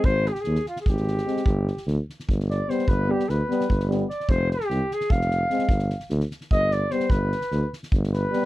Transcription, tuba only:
\new Staff \with { instrumentName = "Tuba" } { \clef bass \time 7/8 \tempo 4 = 149 aes,,4 ees,8 r8 aes,,4. | g,,4 d,8 r8 g,,4. | g,,4 d,8 r8 g,,4. | f,,4 c,8 r8 f,,4. |
g,,4 d,8 r8 g,,4. | g,,4 d,8 r8 g,,4. | }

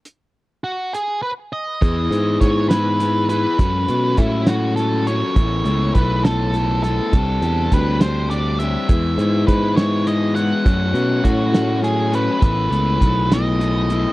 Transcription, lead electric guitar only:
\new Staff \with { instrumentName = "Lead electric guitar" } { \time 6/8 \key e \major \tempo 4. = 68 r4 fis'8 gis'8 b'8 dis''8~ | dis''4 cis''8 b'4 b'8~ | b'4 e'8 fis'8 a'8 cis''8~ | cis''4 b'8 a'4 a'8~ |
a'4 b'8 c''8 d''8 e''8~ | e''4 b'8 cis''8 dis''8 fis''8~ | fis''4 fis'4 gis'8 b'8~ | b'4. dis''4. | }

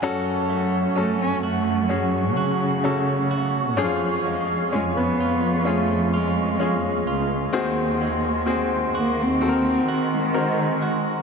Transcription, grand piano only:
<<
  \new Staff \with { instrumentName = "Grand piano" } { \time 4/4 \key fis \minor \tempo 4 = 64 <cis' fis' a'>4 <cis' fis' a'>4 <cis' fis' gis'>4 <cis' fis' a'>4 | <cis' d' eis' gis'>4 <cis' eis' gis'>4 <cis' eis' gis'>4 <cis' eis' gis'>4 | <bis fis' gis'>4 <bis fis' gis'>4 <bis fis' a' ais'>4 <bis fis' ais'>4 | }
  \new Staff \with { instrumentName = "Grand piano" } { \clef bass \time 4/4 \key fis \minor r1 | r1 | dis4. r2 r8 | }
>>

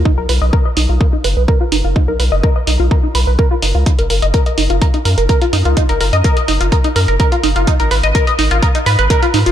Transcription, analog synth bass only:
\new Staff \with { instrumentName = "Analog synth bass" } { \clef bass \time 4/4 \key ges \major \tempo 4 = 126 r16 b,,16 b,,16 b,,16 r8 b,,16 b,,16 r8 fis,,16 b,,16 r8 fis,,16 fis,,16 | r16 b,,16 b,,16 fis,,16 r8 b,,16 b,,16 r8 b,,16 b,,16 r8 fis,,16 des,16 | r16 ges,,16 ges,,16 ges,,16 r8 ges,,16 ges,,16 r8 ges,16 ges,,16 r8 ges,16 des,16 | r16 ges,,16 ges,,16 ges,16 r8 ges,,16 ges,,16 r8 ges,16 ges,,16 r8 ges,,16 ges,,16 |
r16 aes,,16 aes,,16 aes,,16 r8 aes,,16 aes,,16 r8 aes,16 aes,,16 r8 aes,16 ges,,16 | }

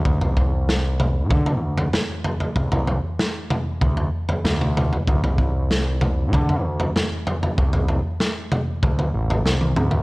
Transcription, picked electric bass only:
\new Staff \with { instrumentName = "Picked electric bass" } { \clef bass \time 4/4 \tempo 4 = 96 d,16 c,4.~ c,16 d8 d,8 r4 | c,16 c,8 r4 r16 d,8 r8 d,4 | d,16 c,4.~ c,16 d8 d,8 r4 | c,16 c,8 r4 r16 d,8 a,,8 c,8 d,8 | }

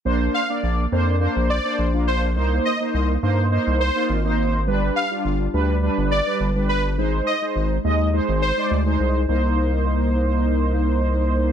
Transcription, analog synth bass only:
\new Staff \with { instrumentName = "Analog synth bass" } { \clef bass \time 4/4 \key c \minor \tempo 4 = 104 bes,,8 r8 bes,,8 f,8. bes,,8 r16 bes,,4 | c,8 r8 c,8 g,8. c,8 r16 aes,,4 | g,,8 r8 g,,8 d,8. g,,8 r16 g,,4 | aes,,8 r8 aes,,8 ees,8. aes,,8 r16 d,8 c,8 |
c,1 | }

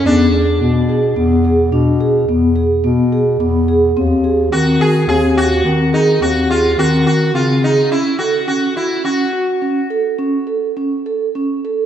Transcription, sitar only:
\new Staff \with { instrumentName = "Sitar" } { \time 7/4 \key fis \minor \tempo 4 = 106 d'2. r1 | r4 fis'8 gis'8 gis'8 fis'4 dis'8 fis'8 eis'8 fis'8 fis'8 eis'8 dis'8 | e'8 fis'8 fis'8 e'8 fis'4. r2. r8 | }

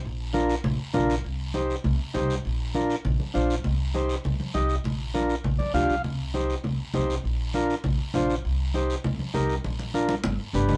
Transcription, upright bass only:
\new Staff \with { instrumentName = "Upright bass" } { \clef bass \time 4/4 \key c \minor \tempo 4 = 200 bes,,2 bes,,8 r8 bes,,4 | c,2 c,8 r8 c,4 | bes,,2 bes,,8 r8 bes,,4 | c,2 c,8 r8 c,4 |
bes,,2 bes,,8 f,8 d,8 c,8 | c,2 c,8 r8 c,4 | bes,,2 bes,,8 r8 bes,,4 | c,2 c,8 r8 c,4 |
bes,,2 g,,8 r8 g,,4 | }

